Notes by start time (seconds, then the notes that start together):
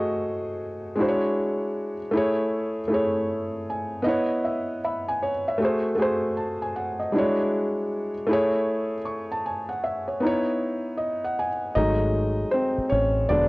Already playing: A3 F#4 G#4 C5 D#5
0.96 G#3 D4 E4
1.00 F#4 C5
1.09 C#5
2.11 A3 E4
2.15 G#4 C#5
2.88 A3 E4
2.92 G#4 C#5
3.70 G#5
4.02 B3 D#5 F#5
4.06 E4 C#5
4.44 E5
4.84 E5 B5
5.08 G#5
5.22 C#5
5.48 E5
5.58 A3 F#4
5.62 G#4 C5
5.96 A3 F#4 G#4
6.02 C5
6.37 A5
6.62 G#5
6.76 F#5
6.99 D#5
7.12 G3 D4 E4
7.17 G#3 F#4 C#5
8.27 A3 E4
8.31 G#4 C#5
9.05 C#6
9.32 A5
9.46 G#5
9.69 F#5
9.84 E5
10.08 C#5
10.20 B3 D#4
10.25 E4 C#5
10.98 D#5
11.25 F#5
11.39 G#5
11.75 G#1 F#3 G#3 A3 D#4 D#5
12.51 C4 C5
12.78 muted fingered electric bass stroke
12.90 A1 C#4 C#5
13.29 E1 D3 F#3 G#3 B3 D4 D5